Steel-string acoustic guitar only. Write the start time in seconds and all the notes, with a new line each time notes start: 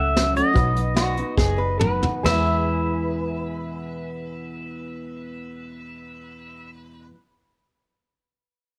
Already playing: F#3 A3 C#4 F#4
0.15 F#3 A3 C#4 F#4
0.35 F#3 A3 C#4 F#4
0.53 B2 F#3 B3 D#4 F#4
0.73 B3 D#4 F#4
0.94 F#3 B3 D#4 F#4
1.16 B3 D#4 F#4
1.80 F#3 B3 D#4 F#4
2.02 B3 D#4 F#4
2.23 E2 B2 E3
2.28 G#3 B3 E4